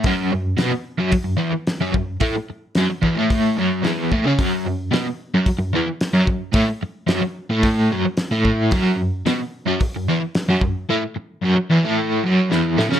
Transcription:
0.04 overdriven electric guitar F#2 F#3, kick, open hi-hat
0.33 overdriven electric guitar F#2
0.57 overdriven electric guitar B2 B3, snare, open hi-hat
0.71 muted overdriven electric guitar stroke
0.99 overdriven electric guitar F#2 F#3
1.12 muted overdriven electric guitar stroke, kick, open hi-hat
1.24 overdriven electric guitar F#2
1.37 overdriven electric guitar E2 E3
1.53 muted overdriven electric guitar stroke
1.67 snare, open hi-hat
1.81 overdriven electric guitar F#2 F#3
1.93 overdriven electric guitar F#2, kick
2.20 overdriven electric guitar A2 A3, kick, open hi-hat
2.36 muted overdriven electric guitar stroke
2.50 muted overdriven electric guitar stroke
2.75 overdriven electric guitar F#2 F#3, snare, open hi-hat
2.91 muted overdriven electric guitar stroke
3.02 overdriven electric guitar E2 E3, kick
3.15 overdriven electric guitar A2 A3
3.30 kick, open hi-hat
3.56 overdriven electric guitar F#2 F#3
3.83 overdriven electric guitar E2 E3, snare, open hi-hat
4.12 overdriven electric guitar A2 A3, kick
4.25 overdriven electric guitar C#3 C#4
4.38 overdriven electric guitar F#2 F#3, kick, open hi-hat
4.66 overdriven electric guitar F#2
4.91 overdriven electric guitar B2 B3, snare, open hi-hat
5.06 muted overdriven electric guitar stroke
5.34 overdriven electric guitar F#2 F#3
5.46 muted overdriven electric guitar stroke, kick, open hi-hat
5.59 overdriven electric guitar F#2
5.73 overdriven electric guitar E2 E3
5.88 muted overdriven electric guitar stroke
6.01 snare, open hi-hat
6.13 overdriven electric guitar F#2 F#3
6.27 overdriven electric guitar F#2, kick
6.53 overdriven electric guitar A2 A3, kick, open hi-hat
6.69 muted overdriven electric guitar stroke
6.83 muted overdriven electric guitar stroke
7.07 overdriven electric guitar F#2 F#3, snare, open hi-hat
7.22 muted overdriven electric guitar stroke
7.50 overdriven electric guitar A2 A3
7.63 kick, open hi-hat
7.91 overdriven electric guitar F#2 F#3
8.06 muted overdriven electric guitar stroke
8.17 snare, open hi-hat
8.31 overdriven electric guitar A2 A3
8.45 kick
8.71 overdriven electric guitar F#2 F#3, kick, open hi-hat
8.97 overdriven electric guitar F#2
9.26 overdriven electric guitar B2 B3, snare, open hi-hat
9.39 muted overdriven electric guitar stroke
9.66 overdriven electric guitar F#2 F#3
9.80 muted overdriven electric guitar stroke, kick, open hi-hat
9.96 overdriven electric guitar F#2
10.09 overdriven electric guitar E2 E3
10.21 muted overdriven electric guitar stroke
10.35 snare, open hi-hat
10.49 overdriven electric guitar F#2 F#3
10.61 overdriven electric guitar F#2, kick
10.89 overdriven electric guitar A2 A3
11.01 muted overdriven electric guitar stroke
11.16 muted overdriven electric guitar stroke
11.42 overdriven electric guitar F#2 F#3
11.56 muted overdriven electric guitar stroke
11.70 overdriven electric guitar E2 E3
11.83 overdriven electric guitar A2 A3
12.23 overdriven electric guitar F#2 F#3
12.50 overdriven electric guitar E2 E3, snare
12.77 overdriven electric guitar A2 A3, snare
12.89 overdriven electric guitar C#3 C#4, snare

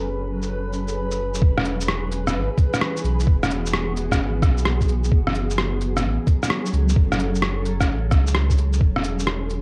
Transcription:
Already playing: sub bass F#1, ambient pad F#3 C#4 G#4 A4, synth texture B4
0.42 shaker
0.73 shaker
0.88 shaker
1.11 shaker
1.34 shaker
1.42 sub bass E1, ambient pad E3, kick
1.58 cross-stick
1.65 cabasa
1.81 shaker
1.86 ambient pad B3, cross-stick
2.06 ambient pad F#4
2.12 cabasa
2.27 cross-stick, shaker
2.34 sub bass G#1
2.58 kick, cabasa
2.74 cross-stick, shaker
2.81 cross-stick
2.97 shaker
3.04 sub bass B1, cabasa
3.20 shaker
3.27 sub bass E1, kick
3.43 cross-stick, shaker
3.50 cabasa
3.66 shaker
3.73 cross-stick
3.97 cabasa
4.12 kick, cross-stick, shaker
4.19 sub bass G#1
4.42 sub bass B1, kick, cross-stick, cabasa
4.58 shaker
4.65 cross-stick
4.81 kick, shaker
4.88 cabasa
5.04 shaker
5.12 sub bass F#1, ambient pad F#3, kick
5.27 cross-stick
5.35 cabasa
5.47 ambient pad C#4, shaker
5.58 cross-stick
5.81 cabasa
5.97 cross-stick, shaker
6.03 sub bass A1, ambient pad A4
6.27 kick, cabasa
6.43 cross-stick, shaker
6.50 cross-stick
6.66 shaker
6.73 sub bass C#2, cabasa
6.89 shaker
6.96 sub bass F#1, kick
7.12 cross-stick, shaker
7.19 cabasa
7.35 shaker
7.42 cross-stick
7.66 cabasa
7.81 kick, cross-stick, shaker
7.88 sub bass A1
8.11 sub bass C#2, kick, cross-stick, cabasa
8.27 shaker
8.35 cross-stick
8.50 kick, shaker
8.58 cabasa
8.73 shaker
8.81 sub bass E1, ambient pad E3, kick
8.96 cross-stick
9.04 cabasa
9.19 ambient pad B3, shaker
9.27 cross-stick
9.35 ambient pad F#4
9.50 cabasa

